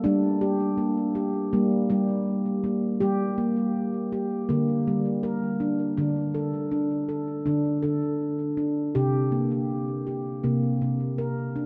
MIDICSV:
0, 0, Header, 1, 2, 480
1, 0, Start_track
1, 0, Key_signature, -2, "minor"
1, 0, Tempo, 742574
1, 33, Time_signature, 4, 2, 24, 8
1, 7536, End_track
2, 0, Start_track
2, 0, Title_t, "Handpan"
2, 0, Program_c, 0, 114
2, 25, Note_on_c, 0, 62, 97
2, 34, Note_on_c, 0, 55, 93
2, 267, Note_on_c, 0, 67, 78
2, 268, Note_off_c, 0, 62, 0
2, 502, Note_on_c, 0, 58, 70
2, 509, Note_off_c, 0, 67, 0
2, 745, Note_on_c, 0, 67, 71
2, 746, Note_off_c, 0, 58, 0
2, 806, Note_off_c, 0, 55, 0
2, 987, Note_off_c, 0, 67, 0
2, 988, Note_on_c, 0, 58, 85
2, 990, Note_on_c, 0, 55, 90
2, 1183, Note_off_c, 0, 55, 0
2, 1226, Note_on_c, 0, 67, 71
2, 1228, Note_off_c, 0, 58, 0
2, 1231, Note_on_c, 0, 55, 86
2, 1705, Note_on_c, 0, 58, 73
2, 1706, Note_off_c, 0, 67, 0
2, 1810, Note_off_c, 0, 55, 0
2, 1942, Note_on_c, 0, 67, 93
2, 1945, Note_off_c, 0, 58, 0
2, 1952, Note_on_c, 0, 55, 90
2, 2183, Note_on_c, 0, 58, 72
2, 2184, Note_off_c, 0, 67, 0
2, 2664, Note_off_c, 0, 58, 0
2, 2666, Note_on_c, 0, 67, 66
2, 2723, Note_off_c, 0, 55, 0
2, 2901, Note_on_c, 0, 58, 84
2, 2905, Note_off_c, 0, 67, 0
2, 2909, Note_on_c, 0, 50, 85
2, 3101, Note_off_c, 0, 50, 0
2, 3150, Note_on_c, 0, 55, 77
2, 3382, Note_on_c, 0, 70, 72
2, 3383, Note_off_c, 0, 58, 0
2, 3621, Note_on_c, 0, 62, 75
2, 3623, Note_off_c, 0, 70, 0
2, 3729, Note_off_c, 0, 55, 0
2, 3854, Note_off_c, 0, 62, 0
2, 3862, Note_on_c, 0, 62, 76
2, 3868, Note_on_c, 0, 50, 79
2, 4102, Note_on_c, 0, 69, 64
2, 4103, Note_off_c, 0, 62, 0
2, 4340, Note_on_c, 0, 62, 66
2, 4343, Note_off_c, 0, 69, 0
2, 4581, Note_on_c, 0, 69, 58
2, 4583, Note_off_c, 0, 62, 0
2, 4642, Note_off_c, 0, 50, 0
2, 4820, Note_on_c, 0, 62, 77
2, 4823, Note_off_c, 0, 69, 0
2, 4827, Note_on_c, 0, 50, 78
2, 5020, Note_off_c, 0, 50, 0
2, 5058, Note_on_c, 0, 69, 66
2, 5063, Note_off_c, 0, 62, 0
2, 5065, Note_on_c, 0, 50, 69
2, 5542, Note_on_c, 0, 62, 67
2, 5543, Note_off_c, 0, 69, 0
2, 5647, Note_off_c, 0, 50, 0
2, 5785, Note_off_c, 0, 62, 0
2, 5785, Note_on_c, 0, 67, 85
2, 5789, Note_on_c, 0, 48, 82
2, 6023, Note_on_c, 0, 58, 64
2, 6027, Note_off_c, 0, 67, 0
2, 6507, Note_off_c, 0, 58, 0
2, 6508, Note_on_c, 0, 67, 57
2, 6565, Note_off_c, 0, 48, 0
2, 6746, Note_on_c, 0, 58, 72
2, 6749, Note_off_c, 0, 67, 0
2, 6749, Note_on_c, 0, 48, 82
2, 6944, Note_off_c, 0, 48, 0
2, 6991, Note_on_c, 0, 48, 70
2, 7229, Note_off_c, 0, 58, 0
2, 7229, Note_on_c, 0, 70, 71
2, 7470, Note_on_c, 0, 62, 63
2, 7471, Note_off_c, 0, 70, 0
2, 7536, Note_off_c, 0, 48, 0
2, 7536, Note_off_c, 0, 62, 0
2, 7536, End_track
0, 0, End_of_file